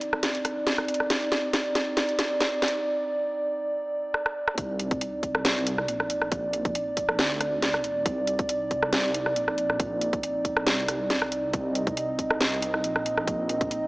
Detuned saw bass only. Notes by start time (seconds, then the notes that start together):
4.58 C2
5.88 A#1
7.19 D2
8.06 C2
9.36 A#1
10.67 C2
11.54 C2
12.84 A#1